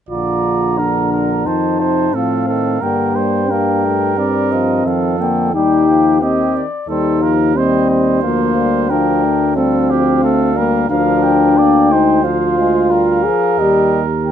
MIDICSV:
0, 0, Header, 1, 6, 480
1, 0, Start_track
1, 0, Key_signature, -2, "major"
1, 0, Tempo, 680272
1, 73, Time_signature, 4, 2, 24, 8
1, 3912, Tempo, 671141
1, 10187, End_track
2, 0, Start_track
2, 0, Title_t, "Cornet"
2, 0, Program_c, 0, 56
2, 81, Note_on_c, 0, 82, 35
2, 1033, Note_on_c, 0, 81, 35
2, 1044, Note_off_c, 0, 82, 0
2, 1511, Note_off_c, 0, 81, 0
2, 1519, Note_on_c, 0, 77, 35
2, 1997, Note_on_c, 0, 79, 34
2, 2007, Note_off_c, 0, 77, 0
2, 2952, Note_on_c, 0, 74, 35
2, 2962, Note_off_c, 0, 79, 0
2, 3187, Note_on_c, 0, 75, 37
2, 3198, Note_off_c, 0, 74, 0
2, 3437, Note_on_c, 0, 77, 38
2, 3448, Note_off_c, 0, 75, 0
2, 3676, Note_on_c, 0, 79, 37
2, 3687, Note_off_c, 0, 77, 0
2, 3908, Note_off_c, 0, 79, 0
2, 3912, Note_on_c, 0, 79, 36
2, 4397, Note_on_c, 0, 75, 41
2, 4408, Note_off_c, 0, 79, 0
2, 4640, Note_on_c, 0, 74, 41
2, 4651, Note_off_c, 0, 75, 0
2, 4875, Note_off_c, 0, 74, 0
2, 4882, Note_on_c, 0, 72, 37
2, 5180, Note_off_c, 0, 72, 0
2, 5356, Note_on_c, 0, 75, 40
2, 5803, Note_off_c, 0, 75, 0
2, 5832, Note_on_c, 0, 77, 42
2, 6308, Note_on_c, 0, 79, 43
2, 6318, Note_off_c, 0, 77, 0
2, 6783, Note_off_c, 0, 79, 0
2, 6787, Note_on_c, 0, 77, 42
2, 7721, Note_off_c, 0, 77, 0
2, 7734, Note_on_c, 0, 77, 47
2, 7978, Note_on_c, 0, 79, 44
2, 7989, Note_off_c, 0, 77, 0
2, 8701, Note_on_c, 0, 77, 44
2, 8712, Note_off_c, 0, 79, 0
2, 9168, Note_off_c, 0, 77, 0
2, 9173, Note_on_c, 0, 77, 45
2, 9665, Note_on_c, 0, 75, 43
2, 9676, Note_off_c, 0, 77, 0
2, 9979, Note_off_c, 0, 75, 0
2, 10139, Note_on_c, 0, 79, 43
2, 10187, Note_off_c, 0, 79, 0
2, 10187, End_track
3, 0, Start_track
3, 0, Title_t, "Trumpet"
3, 0, Program_c, 1, 56
3, 64, Note_on_c, 1, 74, 33
3, 551, Note_on_c, 1, 70, 36
3, 561, Note_off_c, 1, 74, 0
3, 787, Note_off_c, 1, 70, 0
3, 791, Note_on_c, 1, 70, 36
3, 1032, Note_on_c, 1, 72, 34
3, 1043, Note_off_c, 1, 70, 0
3, 1268, Note_off_c, 1, 72, 0
3, 1273, Note_on_c, 1, 72, 33
3, 1512, Note_on_c, 1, 69, 36
3, 1523, Note_off_c, 1, 72, 0
3, 1747, Note_off_c, 1, 69, 0
3, 1752, Note_on_c, 1, 69, 35
3, 1985, Note_on_c, 1, 70, 35
3, 1995, Note_off_c, 1, 69, 0
3, 2229, Note_on_c, 1, 72, 38
3, 2239, Note_off_c, 1, 70, 0
3, 2475, Note_on_c, 1, 70, 40
3, 2485, Note_off_c, 1, 72, 0
3, 3423, Note_off_c, 1, 70, 0
3, 3428, Note_on_c, 1, 69, 36
3, 3902, Note_off_c, 1, 69, 0
3, 3919, Note_on_c, 1, 67, 36
3, 4385, Note_off_c, 1, 67, 0
3, 4389, Note_on_c, 1, 67, 37
3, 4696, Note_off_c, 1, 67, 0
3, 4871, Note_on_c, 1, 69, 38
3, 5116, Note_on_c, 1, 70, 41
3, 5127, Note_off_c, 1, 69, 0
3, 5361, Note_on_c, 1, 72, 45
3, 5371, Note_off_c, 1, 70, 0
3, 5594, Note_off_c, 1, 72, 0
3, 5600, Note_on_c, 1, 72, 41
3, 6312, Note_on_c, 1, 70, 44
3, 6322, Note_off_c, 1, 72, 0
3, 6785, Note_off_c, 1, 70, 0
3, 6789, Note_on_c, 1, 69, 42
3, 7028, Note_on_c, 1, 67, 44
3, 7039, Note_off_c, 1, 69, 0
3, 7263, Note_off_c, 1, 67, 0
3, 7271, Note_on_c, 1, 69, 45
3, 7509, Note_on_c, 1, 70, 47
3, 7520, Note_off_c, 1, 69, 0
3, 7739, Note_off_c, 1, 70, 0
3, 7743, Note_on_c, 1, 70, 43
3, 8229, Note_on_c, 1, 74, 47
3, 8240, Note_off_c, 1, 70, 0
3, 8474, Note_on_c, 1, 72, 44
3, 8485, Note_off_c, 1, 74, 0
3, 9177, Note_on_c, 1, 70, 50
3, 9187, Note_off_c, 1, 72, 0
3, 10187, Note_off_c, 1, 70, 0
3, 10187, End_track
4, 0, Start_track
4, 0, Title_t, "French horn"
4, 0, Program_c, 2, 60
4, 69, Note_on_c, 2, 65, 52
4, 556, Note_on_c, 2, 62, 45
4, 566, Note_off_c, 2, 65, 0
4, 1037, Note_on_c, 2, 63, 45
4, 1048, Note_off_c, 2, 62, 0
4, 1506, Note_on_c, 2, 60, 46
4, 1517, Note_off_c, 2, 63, 0
4, 1983, Note_off_c, 2, 60, 0
4, 1987, Note_on_c, 2, 58, 47
4, 2471, Note_on_c, 2, 62, 47
4, 2482, Note_off_c, 2, 58, 0
4, 2940, Note_off_c, 2, 62, 0
4, 2944, Note_on_c, 2, 60, 51
4, 3652, Note_off_c, 2, 60, 0
4, 3667, Note_on_c, 2, 58, 51
4, 3905, Note_off_c, 2, 58, 0
4, 3908, Note_on_c, 2, 63, 58
4, 4381, Note_off_c, 2, 63, 0
4, 4394, Note_on_c, 2, 60, 51
4, 4699, Note_off_c, 2, 60, 0
4, 4875, Note_on_c, 2, 63, 52
4, 5357, Note_on_c, 2, 60, 53
4, 5367, Note_off_c, 2, 63, 0
4, 5829, Note_off_c, 2, 60, 0
4, 5833, Note_on_c, 2, 58, 59
4, 6309, Note_on_c, 2, 62, 61
4, 6320, Note_off_c, 2, 58, 0
4, 6787, Note_on_c, 2, 60, 58
4, 6798, Note_off_c, 2, 62, 0
4, 7495, Note_off_c, 2, 60, 0
4, 7499, Note_on_c, 2, 58, 55
4, 7733, Note_off_c, 2, 58, 0
4, 7738, Note_on_c, 2, 62, 67
4, 8465, Note_on_c, 2, 63, 61
4, 8476, Note_off_c, 2, 62, 0
4, 8699, Note_off_c, 2, 63, 0
4, 8703, Note_on_c, 2, 65, 65
4, 9421, Note_on_c, 2, 68, 65
4, 9431, Note_off_c, 2, 65, 0
4, 9669, Note_on_c, 2, 67, 67
4, 9680, Note_off_c, 2, 68, 0
4, 9981, Note_off_c, 2, 67, 0
4, 10153, Note_on_c, 2, 67, 64
4, 10187, Note_off_c, 2, 67, 0
4, 10187, End_track
5, 0, Start_track
5, 0, Title_t, "Euphonium"
5, 0, Program_c, 3, 58
5, 60, Note_on_c, 3, 50, 43
5, 1032, Note_on_c, 3, 51, 37
5, 1043, Note_off_c, 3, 50, 0
5, 1269, Note_on_c, 3, 48, 36
5, 1279, Note_off_c, 3, 51, 0
5, 1510, Note_off_c, 3, 48, 0
5, 1514, Note_on_c, 3, 53, 34
5, 1744, Note_off_c, 3, 53, 0
5, 1748, Note_on_c, 3, 51, 38
5, 1986, Note_off_c, 3, 51, 0
5, 1992, Note_on_c, 3, 50, 37
5, 2223, Note_off_c, 3, 50, 0
5, 2228, Note_on_c, 3, 55, 37
5, 2464, Note_off_c, 3, 55, 0
5, 2467, Note_on_c, 3, 58, 43
5, 2713, Note_on_c, 3, 57, 37
5, 2724, Note_off_c, 3, 58, 0
5, 2946, Note_off_c, 3, 57, 0
5, 2950, Note_on_c, 3, 55, 37
5, 3182, Note_off_c, 3, 55, 0
5, 3186, Note_on_c, 3, 53, 41
5, 3420, Note_on_c, 3, 51, 38
5, 3430, Note_off_c, 3, 53, 0
5, 3661, Note_off_c, 3, 51, 0
5, 3665, Note_on_c, 3, 50, 38
5, 3904, Note_off_c, 3, 50, 0
5, 3913, Note_on_c, 3, 55, 43
5, 4148, Note_off_c, 3, 55, 0
5, 4154, Note_on_c, 3, 53, 42
5, 4389, Note_on_c, 3, 51, 43
5, 4400, Note_off_c, 3, 53, 0
5, 4702, Note_off_c, 3, 51, 0
5, 4873, Note_on_c, 3, 55, 47
5, 5110, Note_on_c, 3, 53, 39
5, 5121, Note_off_c, 3, 55, 0
5, 5346, Note_off_c, 3, 53, 0
5, 5350, Note_on_c, 3, 55, 45
5, 5819, Note_off_c, 3, 55, 0
5, 5841, Note_on_c, 3, 53, 44
5, 6068, Note_off_c, 3, 53, 0
5, 6078, Note_on_c, 3, 55, 42
5, 6306, Note_off_c, 3, 55, 0
5, 6322, Note_on_c, 3, 53, 47
5, 6556, Note_on_c, 3, 57, 51
5, 6566, Note_off_c, 3, 53, 0
5, 6786, Note_on_c, 3, 55, 43
5, 6797, Note_off_c, 3, 57, 0
5, 7030, Note_on_c, 3, 53, 49
5, 7041, Note_off_c, 3, 55, 0
5, 7261, Note_off_c, 3, 53, 0
5, 7266, Note_on_c, 3, 57, 53
5, 7499, Note_on_c, 3, 55, 46
5, 7510, Note_off_c, 3, 57, 0
5, 7738, Note_off_c, 3, 55, 0
5, 7746, Note_on_c, 3, 53, 55
5, 8215, Note_off_c, 3, 53, 0
5, 8227, Note_on_c, 3, 58, 51
5, 8472, Note_on_c, 3, 56, 48
5, 8482, Note_off_c, 3, 58, 0
5, 8701, Note_on_c, 3, 53, 45
5, 8712, Note_off_c, 3, 56, 0
5, 8939, Note_off_c, 3, 53, 0
5, 8944, Note_on_c, 3, 56, 49
5, 9187, Note_on_c, 3, 55, 48
5, 9198, Note_off_c, 3, 56, 0
5, 9424, Note_off_c, 3, 55, 0
5, 9431, Note_on_c, 3, 53, 48
5, 9664, Note_off_c, 3, 53, 0
5, 9674, Note_on_c, 3, 55, 53
5, 9977, Note_off_c, 3, 55, 0
5, 10155, Note_on_c, 3, 51, 47
5, 10187, Note_off_c, 3, 51, 0
5, 10187, End_track
6, 0, Start_track
6, 0, Title_t, "Bass trombone"
6, 0, Program_c, 4, 57
6, 68, Note_on_c, 4, 34, 34
6, 1029, Note_on_c, 4, 41, 33
6, 1040, Note_off_c, 4, 34, 0
6, 1510, Note_on_c, 4, 45, 36
6, 1521, Note_off_c, 4, 41, 0
6, 1984, Note_off_c, 4, 45, 0
6, 1988, Note_on_c, 4, 43, 39
6, 3395, Note_off_c, 4, 43, 0
6, 3420, Note_on_c, 4, 41, 36
6, 3908, Note_on_c, 4, 39, 38
6, 3919, Note_off_c, 4, 41, 0
6, 4674, Note_off_c, 4, 39, 0
6, 4871, Note_on_c, 4, 39, 42
6, 5828, Note_on_c, 4, 38, 48
6, 5839, Note_off_c, 4, 39, 0
6, 7732, Note_off_c, 4, 38, 0
6, 7736, Note_on_c, 4, 38, 47
6, 9434, Note_off_c, 4, 38, 0
6, 9663, Note_on_c, 4, 39, 48
6, 10187, Note_off_c, 4, 39, 0
6, 10187, End_track
0, 0, End_of_file